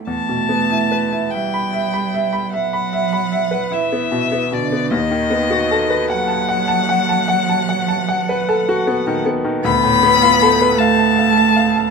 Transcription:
0.00 0.10 C4 soft
0.06 4.87 E2 soft
0.06 1.37 A3 medium
0.06 1.32 A5 medium
0.29 0.63 B2 soft
0.49 0.83 B3 soft
0.71 1.04 E4 soft
0.92 1.25 B4 soft
1.12 1.45 E4 soft
1.30 1.66 E5 soft
1.30 2.52 G5 medium
1.35 2.56 G3 soft
1.54 1.86 B5 soft
1.73 2.05 E5 soft
1.93 2.25 B5 soft
2.14 2.45 E5 soft
2.33 2.65 B5 soft
2.53 3.73 F#3 medium
2.53 2.85 E5 soft
2.53 3.74 F#5 medium
2.73 3.04 B5 soft
2.93 3.24 E5 soft
3.13 3.44 B5 soft
3.32 3.64 E5 soft
3.51 3.84 B4 soft
3.72 4.54 E3 medium
3.72 4.04 E4 soft
3.72 4.55 E5 medium
3.92 4.24 B3 soft
4.12 4.44 B2 soft
4.32 4.64 B3 soft
4.52 4.83 B2 soft
4.52 4.92 D3 medium
4.52 4.92 D5 medium
4.72 4.92 B3 soft
4.90 9.61 D#2 medium
4.90 6.12 D#3 medium
4.90 6.08 D#5 medium
5.11 5.43 D#3 soft
5.30 5.62 B3 soft
5.50 5.82 F#4 soft
5.71 6.03 A4 medium
5.90 6.22 B4 medium
6.10 9.26 F#3 medium
6.10 6.42 F#5 medium
6.10 9.22 F#5 medium
6.28 6.61 A5 medium
6.49 6.81 F#5 medium
6.68 7.01 A5 medium
6.89 7.21 F#5 medium
7.09 7.40 A5 medium
7.28 7.60 F#5 medium
7.49 7.80 A5 medium
7.69 8.00 F#5 medium
7.88 8.20 A5 medium
8.09 8.40 F#5 medium
8.29 8.60 B4 medium
8.49 8.80 A4 medium
8.69 9.00 F#4 medium
8.87 9.19 B3 medium
9.07 9.38 D#3 medium
9.26 9.57 B3 medium
9.44 9.64 D#3 medium
9.64 11.90 D2 medium
9.64 10.79 B3 medium
9.64 10.80 B5 loud
9.84 10.15 A2 medium
10.03 10.34 B3 medium
10.22 10.52 F4 soft
10.42 10.72 A4 medium
10.62 10.91 B4 medium
10.77 11.90 A3 medium
10.77 11.10 F5 medium
10.77 11.90 A5 loud
10.99 11.28 A5 medium
11.19 11.48 F5 medium
11.38 11.68 A5 medium
11.56 11.87 F5 medium
11.76 11.90 A5 medium

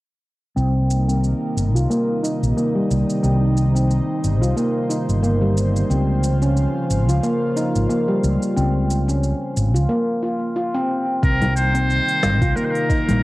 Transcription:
0.56 1.32 C2 medium
0.56 5.86 C3 medium
0.56 5.86 D#3 medium
0.56 5.86 G3 medium
0.56 3.21 A#3 medium
0.56 0.67 C4 medium
0.56 5.86 D#4 medium
0.56 shaker soft
0.91 shaker medium
1.08 1.73 C4 medium
1.08 shaker soft
1.24 shaker soft
1.56 1.75 G1 medium
1.56 shaker medium
1.75 1.85 C2 medium
1.75 1.83 F4 medium
1.75 shaker soft
1.90 2.08 A#3 medium
1.90 shaker soft
2.23 2.41 D#4 medium
2.23 shaker medium
2.42 2.52 A#1 medium
2.42 shaker soft
2.57 2.74 A#3 medium
2.57 shaker soft
2.75 2.83 G3 medium
2.91 3.03 C2 medium
2.91 shaker medium
3.10 shaker soft
3.23 3.99 C2 medium
3.23 3.34 C4 medium
3.23 9.86 C5 medium
3.23 shaker soft
3.57 shaker medium
3.75 4.40 C4 medium
3.75 shaker soft
3.90 shaker soft
4.24 4.42 G1 medium
4.24 shaker medium
4.41 4.52 C2 medium
4.41 4.50 F4 medium
4.41 shaker soft
4.57 4.74 A#3 medium
4.57 shaker soft
4.90 5.07 D#4 medium
4.90 shaker medium
5.08 5.82 G1 medium
5.08 shaker soft
5.23 5.41 A#3 medium
5.23 shaker soft
5.41 5.50 G3 medium
5.57 shaker medium
5.76 shaker soft
5.89 6.65 C#2 medium
5.89 9.86 C#3 medium
5.89 9.86 F3 medium
5.89 6.00 C4 medium
5.89 9.86 F4 medium
5.89 shaker soft
6.24 shaker medium
6.42 7.07 C#4 medium
6.42 shaker soft
6.57 shaker soft
6.90 7.08 G#1 medium
6.90 shaker medium
7.08 7.18 C#2 medium
7.08 7.17 F4 medium
7.08 shaker soft
7.23 7.41 A#3 medium
7.23 shaker soft
7.56 7.74 D#4 medium
7.56 shaker medium
7.75 7.85 G#1 medium
7.75 shaker soft
7.89 8.07 A#3 medium
7.89 shaker soft
8.08 8.17 G3 medium
8.23 8.36 C#2 medium
8.23 shaker medium
8.42 shaker soft
8.56 9.32 C#2 medium
8.56 8.67 C4 medium
8.56 shaker soft
8.90 shaker medium
9.08 9.73 C#4 medium
9.08 shaker soft
9.23 shaker soft
9.57 9.76 G#1 medium
9.57 shaker medium
9.74 9.85 C#2 medium
9.74 9.83 F4 medium
9.74 shaker soft
9.89 10.07 A#3 medium
10.23 10.41 F4 medium
10.56 10.73 F4 medium
10.74 10.89 C4 medium
11.23 11.98 C2 medium
11.23 13.23 C3 medium
11.23 13.23 D#3 medium
11.23 13.23 G3 medium
11.23 13.23 A#3 medium
11.23 11.34 C4 medium
11.23 13.23 D#4 medium
11.23 11.54 A#4 loud
11.23 kick loud
11.23 shaker soft
11.42 open hi-hat soft
11.42 low conga medium
11.56 12.57 C5 loud
11.56 shaker medium
11.75 12.40 C4 medium
11.75 open hi-hat medium
11.75 shaker soft
11.90 shaker soft
12.09 open hi-hat soft
12.23 12.42 G1 medium
12.23 snare medium
12.23 low conga medium
12.23 shaker medium
12.42 12.51 C2 medium
12.42 12.50 F4 medium
12.42 kick loud
12.42 open hi-hat medium
12.42 shaker soft
12.56 12.74 A#3 medium
12.56 12.66 A#4 medium
12.56 shaker soft
12.65 12.73 C5 medium
12.71 13.23 A#4 medium
12.75 open hi-hat soft
12.89 13.07 D#4 medium
12.89 kick medium
12.89 shaker medium
13.09 13.18 A#1 medium
13.09 open hi-hat medium
13.09 low conga medium
13.09 shaker soft

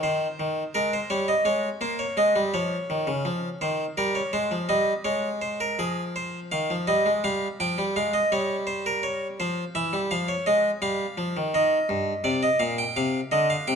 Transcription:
0.03 0.25 D#3 medium
0.03 0.73 C5 medium
0.40 0.62 D#3 medium
0.75 0.97 G#3 medium
0.75 0.92 A#4 medium
0.93 1.10 C5 medium
1.10 1.32 G3 medium
1.10 1.28 C#5 medium
1.28 1.45 D#5 medium
1.45 1.68 G#3 medium
1.45 1.68 C#5 medium
1.81 2.03 A#3 medium
1.81 1.99 C5 medium
1.99 2.17 C#5 medium
2.17 2.35 G#3 medium
2.17 2.40 D#5 medium
2.36 2.53 G3 medium
2.54 2.76 F3 medium
2.54 3.58 C#5 medium
2.90 3.07 D#3 medium
3.07 3.25 C#3 medium
3.25 3.47 F3 medium
3.61 3.84 D#3 medium
3.61 3.84 C5 medium
3.97 4.20 G3 medium
3.97 4.15 A#4 medium
4.15 4.33 C#5 medium
4.33 4.51 G#3 medium
4.33 4.56 C5 medium
4.51 4.69 F3 medium
4.69 4.92 G3 medium
4.69 4.92 D#5 medium
5.04 5.76 G#3 medium
5.04 5.27 C#5 medium
5.42 5.60 C5 medium
5.60 5.78 A#4 medium
5.79 6.49 F3 medium
5.79 6.02 G#4 medium
6.16 6.38 C5 medium
6.52 6.69 D#3 medium
6.52 6.74 F5 loud
6.70 6.87 F3 medium
6.87 7.05 G3 medium
6.87 7.10 D#5 medium
7.06 7.23 G#3 medium
7.24 7.46 G3 medium
7.24 7.46 F5 medium
7.60 7.77 F3 medium
7.60 7.82 G5 medium
7.78 7.96 G3 medium
7.96 8.19 G#3 medium
7.96 8.14 F5 medium
8.14 8.31 D#5 loud
8.32 9.37 G3 medium
8.32 8.55 C#5 medium
8.67 8.85 C5 medium
8.86 9.04 A#4 medium
9.03 9.26 C#5 medium
9.40 9.63 F3 medium
9.40 9.62 C5 loud
9.75 9.93 E3 medium
9.75 9.98 E5 medium
9.93 10.11 G3 medium
10.11 10.34 F3 medium
10.11 10.29 F5 loud
10.28 10.46 C#5 medium
10.46 10.69 G#3 medium
10.46 10.69 D#5 medium
10.82 11.04 G3 medium
10.82 11.51 F5 medium
11.18 11.35 F3 medium
11.37 11.53 D#3 medium
11.54 11.76 D#3 medium
11.54 12.23 D#5 medium
11.89 12.12 G2 medium
12.24 12.47 C3 loud
12.24 12.42 D5 medium
12.43 12.60 D#5 medium
12.59 12.82 A#2 medium
12.59 12.78 F5 medium
12.78 12.96 G5 medium
12.96 13.19 C3 loud
12.96 13.19 F5 medium
13.32 13.54 D3 loud
13.32 13.49 D#5 medium
13.50 13.68 F5 medium
13.68 13.75 C3 loud
13.68 13.75 G5 medium

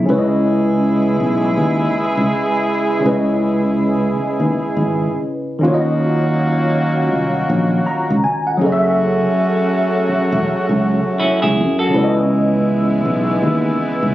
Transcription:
0.03 2.98 C#3 medium
0.03 2.99 C#4 medium
0.07 1.15 C#2 loud
0.07 5.22 G#3 medium
0.07 3.00 E4 medium
0.07 5.22 E4 medium
0.07 5.22 G#4 medium
0.07 3.01 B4 medium
0.12 0.18 C#5 medium
0.18 3.05 D#5 medium
1.20 1.50 B1 medium
1.57 1.87 D#2 medium
2.17 2.28 C#2 medium
3.00 5.57 C#3 medium
3.00 5.58 C#4 medium
3.04 4.12 C#2 loud
3.04 5.59 E4 medium
3.04 5.60 B4 medium
3.09 5.62 D#5 medium
4.17 muted fretless electric bass stroke medium
4.40 4.50 D#2 medium
4.54 muted fretless electric bass stroke soft
4.77 5.06 G#1 medium
5.59 8.53 D#3 medium
5.59 8.54 C#4 medium
5.63 7.13 D#2 loud
5.63 8.19 F#3 medium
5.63 8.19 A#3 medium
5.63 8.19 C#4 medium
5.63 8.55 F4 medium
5.63 8.19 F#4 medium
5.63 8.57 F#4 medium
5.68 5.74 C#5 medium
5.74 8.61 D#5 medium
7.13 7.42 C2 medium
7.50 7.79 A#1 medium
7.86 8.21 A#5 medium
8.10 8.21 C#2 medium
8.24 8.45 G#5 medium
8.47 8.81 F#5 medium
8.57 11.51 F#3 medium
8.57 11.52 F#3 medium
8.57 11.52 A3 medium
8.57 11.52 C#4 medium
8.57 11.52 F#4 medium
8.61 9.21 F#1 medium
8.61 11.53 G#4 medium
8.61 11.54 A4 medium
8.66 8.71 D#5 medium
8.72 11.58 E5 medium
10.09 muted fretless electric bass stroke soft
10.32 10.43 E1 loud
10.46 muted fretless electric bass stroke soft
10.69 10.99 C#2 medium
11.20 11.42 C#4 medium
11.20 11.41 E4 medium
11.20 muted fretless electric bass stroke soft
11.42 11.59 C#2 loud
11.42 11.78 E4 medium
11.42 11.77 G#4 medium
11.57 11.87 F#2 loud
11.79 12.15 F#4 medium
11.79 12.14 A4 medium
11.88 14.15 C#3 medium
11.88 14.15 C#4 medium
11.93 13.01 C#2 loud
11.93 14.15 E3 medium
11.93 14.15 G#3 medium
11.93 14.15 B3 medium
11.93 14.15 E4 medium
11.93 14.15 B4 medium
11.97 12.03 D5 medium
12.04 14.15 D#5 medium
13.05 13.35 B1 medium
13.43 13.72 D#2 medium
14.03 14.13 C#2 medium

